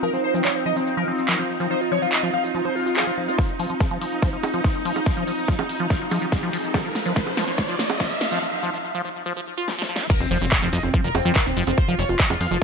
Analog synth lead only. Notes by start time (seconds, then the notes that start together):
0.03 A#4
0.13 C4
0.24 C5
0.34 C4
0.45 C#5
0.55 C4
0.66 D#5
0.76 C4
0.87 C4
0.97 A#4
1.08 C4
1.18 C4
1.29 A#4
1.39 C4
1.60 C4
1.71 C5
1.81 F4
1.92 C#5
2.02 F4
2.13 D#5
2.23 F4
2.34 F5
2.44 F4
2.55 F4
2.65 C5
2.76 F4
2.86 F4
2.96 G#4
3.07 F4
3.28 F4
10.10 A#4
10.20 C4
10.31 C5
10.41 C4
10.52 C#5
10.62 C4
10.73 D#5
10.83 C4
10.94 C4
11.04 A#4
11.15 C4
11.25 C4
11.36 A#4
11.46 C4
11.67 C4
11.78 C5
11.88 F4
11.99 C#5
12.09 F4
12.20 D#5
12.30 F4
12.41 F5
12.51 F4